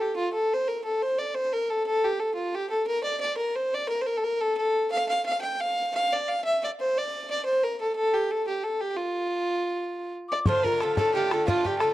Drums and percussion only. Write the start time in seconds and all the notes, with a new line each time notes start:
10.46 bodhran
10.64 bodhran
10.80 bodhran
10.97 bodhran
11.31 bodhran
11.48 bodhran
11.65 bodhran
11.80 bodhran